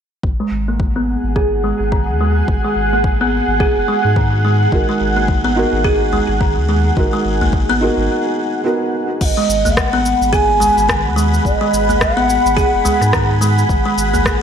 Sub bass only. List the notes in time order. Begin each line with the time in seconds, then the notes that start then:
0.23 G#1
0.51 G#1
1.24 G#1
1.80 G#1
2.08 D#2
2.48 G#1
2.76 G#1
3.48 G#1
3.76 F#1
4.04 G#2
4.72 G#1
5.00 G#1
5.72 G#1
6.28 G#1
6.57 D#2
6.97 G#1
7.25 G#1
7.97 G#1
9.21 G#1
9.49 G#1
10.21 G#1
10.77 G#1
11.05 D#2
11.45 G#1
11.73 G#1
12.45 G#1
12.73 F#1
13.01 G#2
13.69 G#1
13.97 G#1